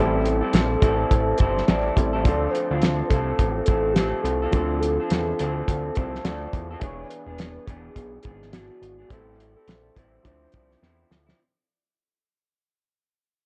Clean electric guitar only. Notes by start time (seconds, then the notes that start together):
Already playing: A2 E3 G3 C4 E4
0.00 A4
0.41 G3 C4 E4 A4
0.80 G3 C4 E4 A4
1.38 G3 C4 E4 A4
1.67 G3 C4 E4 A4
2.13 G3 C4 E4 A4
2.25 D3 A3 C4 F4 A4
2.71 C4 F4 A4
3.10 A3 C4 F4 A4
3.67 A3 C4 F4 A4
3.97 A3 C4 F4 A4
4.42 C4 F4 A4
4.54 D3 A3 C4 F4 A4
5.00 C4 F4 A4
5.39 A3 C4 F4 A4
5.95 A3 C4 F4
6.00 A4
6.25 A3 C4 F4 A4
6.71 C4 F4 A4
6.82 B3 D4 G#4
7.27 B3 D4 G#4
7.67 E3 B3 D4 G#4
8.23 E3 B3 D4 G#4
8.52 E3 B3 D4 G#4
8.98 B3 D4 G#4
9.10 A2 E3 G3 C4 E4
9.56 G3 C4 E4
9.95 E3 G3 C4 E4
10.25 D3 F3 C4 E4
10.52 D3 F3 C4 E4
10.81 D3 F3 C4 E4
11.26 F3 C4 E4